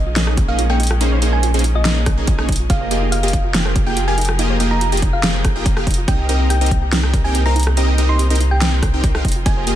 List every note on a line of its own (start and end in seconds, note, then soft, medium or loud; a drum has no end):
0.00 2.68 A#1 medium
0.00 2.66 G#3 medium
0.00 2.66 A#3 medium
0.00 2.66 C#4 medium
0.06 0.15 F4 medium
0.16 0.46 A#3 medium
0.16 0.46 C#4 medium
0.16 0.46 D#4 medium
0.16 0.20 D#4 medium
0.16 0.46 G#4 medium
0.16 0.46 D#5 medium
0.16 snare loud
0.16 closed hi-hat medium
0.27 0.36 C#5 medium
0.27 cross-stick medium
0.37 0.47 G#4 medium
0.37 kick loud
0.37 closed hi-hat medium
0.48 0.67 A#3 loud
0.48 0.67 C#4 medium
0.48 0.54 D#4 medium
0.48 0.67 D#4 medium
0.48 0.67 G#4 medium
0.48 0.67 D#5 loud
0.48 0.66 F5 medium
0.59 0.65 F4 medium
0.59 closed hi-hat medium
0.69 0.79 A#3 medium
0.69 0.78 C#4 medium
0.69 0.78 D#4 medium
0.69 0.75 G#4 loud
0.69 0.78 G#4 medium
0.69 0.78 C#5 medium
0.69 0.87 G5 medium
0.80 0.86 D#4 loud
0.80 closed hi-hat medium
0.83 closed hi-hat medium
0.87 0.99 F4 medium
0.87 cross-stick medium
0.87 closed hi-hat medium
1.01 1.20 A#3 loud
1.01 1.20 C#4 medium
1.01 1.05 D#4 medium
1.01 1.20 D#4 medium
1.01 1.20 G#4 medium
1.01 1.20 C5 loud
1.01 closed hi-hat medium
1.12 1.21 C#5 medium
1.22 1.52 A#3 medium
1.22 1.52 C#4 medium
1.22 1.51 D#4 medium
1.22 1.31 G#4 medium
1.22 1.52 G#4 medium
1.22 1.52 C5 loud
1.22 closed hi-hat medium
1.33 1.39 D#4 medium
1.33 1.50 G#5 medium
1.43 1.49 F4 medium
1.43 closed hi-hat medium
1.54 1.63 A#3 medium
1.54 1.63 C#4 medium
1.54 1.63 D#4 medium
1.54 1.60 G#4 loud
1.54 1.63 G#4 medium
1.54 1.63 C5 medium
1.54 closed hi-hat medium
1.59 closed hi-hat medium
1.64 1.71 D#4 loud
1.64 closed hi-hat medium
1.75 1.84 F4 medium
1.75 1.93 D#5 medium
1.85 2.15 A#3 medium
1.85 2.15 C#4 medium
1.85 1.89 D#4 medium
1.85 2.15 D#4 medium
1.85 2.15 G#4 medium
1.85 2.15 D#5 medium
1.85 snare loud
1.85 closed hi-hat medium
1.96 2.05 C#5 medium
2.06 2.16 G#4 medium
2.06 kick loud
2.06 cross-stick medium
2.06 closed hi-hat medium
2.17 2.36 A#3 medium
2.17 2.36 C#4 medium
2.17 2.23 D#4 medium
2.17 2.36 D#4 medium
2.17 2.36 G#4 medium
2.17 2.36 D#5 loud
2.27 2.34 F4 medium
2.27 kick loud
2.27 closed hi-hat medium
2.38 2.47 A#3 medium
2.38 2.47 C#4 medium
2.38 2.47 D#4 medium
2.38 2.47 G#4 medium
2.38 2.44 G#4 loud
2.38 2.47 C#5 medium
2.38 cross-stick medium
2.49 2.55 D#4 loud
2.49 kick medium
2.49 closed hi-hat medium
2.52 closed hi-hat medium
2.56 2.68 F4 medium
2.56 closed hi-hat medium
2.70 6.06 F1 medium
2.70 6.05 F3 medium
2.70 2.89 A#3 loud
2.70 9.75 D#4 medium
2.70 2.74 D#4 medium
2.70 2.89 F4 medium
2.70 2.89 G4 medium
2.70 6.05 G4 medium
2.70 6.05 G#4 medium
2.70 2.89 G#4 medium
2.70 6.05 A#4 medium
2.70 2.89 D#5 loud
2.70 3.05 F5 loud
2.70 kick loud
2.70 closed hi-hat medium
2.81 2.90 C5 medium
2.91 3.21 A#3 medium
2.91 3.21 F4 medium
2.91 3.00 G4 medium
2.91 3.20 G4 medium
2.91 3.21 G#4 medium
2.91 3.21 D#5 medium
2.91 closed hi-hat medium
3.02 3.08 D#4 medium
3.12 3.18 F4 medium
3.12 3.48 F5 medium
3.12 closed hi-hat medium
3.23 3.32 A#3 medium
3.23 3.32 F4 medium
3.23 3.29 G4 loud
3.23 3.32 G4 medium
3.23 3.32 G#4 medium
3.23 3.32 D#5 medium
3.23 closed hi-hat soft
3.28 closed hi-hat medium
3.33 3.40 D#4 loud
3.33 kick medium
3.33 closed hi-hat medium
3.44 3.53 F4 medium
3.54 3.84 A#3 medium
3.54 3.58 D#4 medium
3.54 3.84 F4 medium
3.54 3.84 G4 medium
3.54 3.84 G#4 medium
3.54 3.84 G5 medium
3.54 snare loud
3.54 closed hi-hat medium
3.65 3.74 C5 medium
3.65 cross-stick medium
3.76 3.85 G4 medium
3.76 kick loud
3.76 closed hi-hat medium
3.86 4.05 A#3 loud
3.86 3.92 D#4 medium
3.86 4.05 F4 medium
3.86 4.05 G4 medium
3.86 4.05 G#4 medium
3.86 4.04 G5 medium
3.86 4.05 G5 loud
3.97 4.03 F4 medium
3.97 closed hi-hat medium
4.07 4.17 A#3 medium
4.07 4.17 F4 medium
4.07 4.13 G4 loud
4.07 4.17 G4 medium
4.07 4.17 G#4 medium
4.07 4.17 F5 medium
4.07 4.25 G#5 medium
4.18 4.24 D#4 loud
4.18 closed hi-hat medium
4.21 closed hi-hat medium
4.25 cross-stick medium
4.25 closed hi-hat medium
4.29 4.38 F4 medium
4.39 4.58 A#3 medium
4.39 4.43 D#4 medium
4.39 4.58 F4 medium
4.39 4.58 G4 medium
4.39 4.58 G#4 medium
4.39 4.58 D#5 loud
4.39 closed hi-hat medium
4.50 4.59 C5 medium
4.60 4.90 A#3 medium
4.60 4.90 F4 medium
4.60 4.90 G4 medium
4.60 4.70 G4 medium
4.60 4.90 G#4 medium
4.60 4.90 D#5 medium
4.60 closed hi-hat medium
4.71 4.77 D#4 medium
4.71 4.88 A#5 medium
4.81 4.87 F4 medium
4.81 closed hi-hat medium
4.92 5.01 A#3 medium
4.92 5.01 F4 medium
4.92 4.98 G4 loud
4.92 5.01 G4 medium
4.92 5.01 G#4 medium
4.92 5.01 D#5 medium
4.92 closed hi-hat soft
4.97 closed hi-hat medium
5.02 5.09 D#4 loud
5.02 kick medium
5.02 closed hi-hat medium
5.13 5.22 F4 medium
5.13 5.30 F5 medium
5.23 5.53 A#3 medium
5.23 5.27 D#4 medium
5.23 5.53 F4 medium
5.23 5.53 G4 medium
5.23 5.53 G#4 medium
5.23 5.53 G5 medium
5.23 snare loud
5.23 closed hi-hat medium
5.34 5.43 C5 medium
5.44 5.54 G4 medium
5.44 kick loud
5.44 cross-stick medium
5.44 closed hi-hat medium
5.55 5.74 A#3 medium
5.55 5.61 D#4 medium
5.55 5.74 F4 medium
5.55 5.74 G4 medium
5.55 5.74 G#4 medium
5.55 5.74 G5 loud
5.66 5.72 F4 medium
5.66 kick loud
5.66 closed hi-hat medium
5.76 5.86 A#3 medium
5.76 5.86 F4 medium
5.76 5.82 G4 loud
5.76 5.86 G4 medium
5.76 5.86 G#4 medium
5.76 5.86 F5 medium
5.76 cross-stick medium
5.87 5.93 D#4 loud
5.87 kick medium
5.87 closed hi-hat medium
5.91 closed hi-hat medium
5.94 6.06 F4 medium
5.94 closed hi-hat medium
6.08 9.23 C2 medium
6.08 9.22 C3 medium
6.08 9.22 A#3 medium
6.08 6.27 C4 medium
6.08 6.12 D#4 medium
6.08 6.27 D#4 medium
6.08 6.27 G4 loud
6.08 6.27 A#4 medium
6.08 6.27 D#5 loud
6.08 6.43 G5 loud
6.08 kick loud
6.08 closed hi-hat medium
6.19 6.28 G5 medium
6.29 6.59 C4 medium
6.29 6.59 D#4 medium
6.29 6.59 G4 medium
6.29 6.38 A#4 medium
6.29 6.59 A#4 medium
6.29 6.59 D#5 loud
6.29 closed hi-hat medium
6.40 6.46 D#4 medium
6.50 6.57 G4 medium
6.50 6.86 G5 medium
6.50 closed hi-hat medium
6.61 6.70 C4 medium
6.61 6.67 D#4 medium
6.61 6.70 D#4 medium
6.61 6.70 G4 medium
6.61 6.70 A#4 medium
6.61 6.70 D#5 medium
6.61 closed hi-hat soft
6.66 closed hi-hat medium
6.71 6.78 D#4 loud
6.71 kick medium
6.71 closed hi-hat medium
6.82 6.91 G4 medium
6.92 7.22 C4 medium
6.92 6.96 D#4 medium
6.92 7.22 D#4 medium
6.92 7.22 G4 medium
6.92 7.22 A#4 medium
6.92 7.22 G5 medium
6.92 snare loud
6.92 closed hi-hat medium
7.03 7.12 G5 medium
7.03 cross-stick medium
7.14 7.23 A#4 medium
7.14 kick loud
7.14 closed hi-hat medium
7.24 7.43 C4 medium
7.24 7.30 D#4 medium
7.24 7.43 D#4 medium
7.24 7.43 G4 medium
7.24 7.43 A#4 medium
7.24 7.43 G5 loud
7.24 7.42 G#5 medium
7.35 7.41 G4 medium
7.35 closed hi-hat medium
7.46 7.55 C4 medium
7.46 7.55 D#4 medium
7.46 7.51 D#4 medium
7.46 7.55 G4 medium
7.46 7.55 A#4 medium
7.46 7.54 F5 medium
7.46 7.63 A#5 medium
7.56 7.62 D#4 loud
7.56 closed hi-hat soft
7.60 closed hi-hat medium
7.63 7.76 G4 medium
7.63 cross-stick medium
7.63 closed hi-hat medium
7.77 7.96 C4 loud
7.77 7.81 D#4 medium
7.77 7.96 D#4 medium
7.77 7.96 G4 medium
7.77 7.96 A#4 medium
7.77 7.96 D#5 loud
7.77 closed hi-hat medium
7.88 7.97 G5 medium
7.98 8.28 C4 medium
7.98 8.28 D#4 medium
7.98 8.28 G4 medium
7.98 8.08 A#4 medium
7.98 8.28 A#4 medium
7.98 8.28 D#5 loud
7.98 closed hi-hat medium
8.09 8.15 D#4 medium
8.09 8.26 C6 medium
8.19 8.26 G4 medium
8.19 closed hi-hat medium
8.30 8.39 C4 medium
8.30 8.36 D#4 medium
8.30 8.39 D#4 medium
8.30 8.39 G4 medium
8.30 8.39 A#4 medium
8.30 8.39 D#5 medium
8.30 closed hi-hat soft
8.35 closed hi-hat medium
8.40 8.47 D#4 loud
8.40 closed hi-hat medium
8.51 8.60 G4 medium
8.51 8.69 G5 medium
8.62 8.91 C4 medium
8.62 8.65 D#4 medium
8.62 8.91 D#4 medium
8.62 8.91 G4 medium
8.62 8.91 A#4 medium
8.62 8.91 G5 medium
8.62 snare loud
8.62 closed hi-hat medium
8.72 8.81 G5 medium
8.83 8.92 A#4 medium
8.83 kick loud
8.83 cross-stick medium
8.83 closed hi-hat medium
8.94 9.12 C4 medium
8.94 8.99 D#4 medium
8.94 9.12 D#4 medium
8.94 9.12 G4 medium
8.94 9.12 A#4 medium
8.94 9.12 G5 loud
9.04 9.10 G4 medium
9.04 kick loud
9.04 closed hi-hat medium
9.15 9.24 C4 medium
9.15 9.20 D#4 medium
9.15 9.24 D#4 medium
9.15 9.24 G4 medium
9.15 9.24 A#4 medium
9.15 9.24 F5 medium
9.15 cross-stick medium
9.25 9.75 F1 medium
9.25 9.75 F3 medium
9.25 9.31 D#4 loud
9.25 9.75 F4 medium
9.25 9.75 G#4 medium
9.25 9.75 A#4 medium
9.25 kick medium
9.25 closed hi-hat soft
9.28 closed hi-hat medium
9.32 closed hi-hat medium
9.36 9.45 F4 medium
9.46 9.65 A#3 loud
9.46 9.50 D#4 medium
9.46 9.65 F4 medium
9.46 9.65 G4 medium
9.46 9.65 G#4 medium
9.46 9.65 D#5 loud
9.46 9.75 G#5 loud
9.46 kick loud
9.46 closed hi-hat medium
9.57 9.66 C5 medium
9.67 9.75 A#3 medium
9.67 9.75 F4 medium
9.67 9.75 G4 medium
9.67 9.75 G#4 medium
9.67 9.75 D#5 medium
9.67 closed hi-hat medium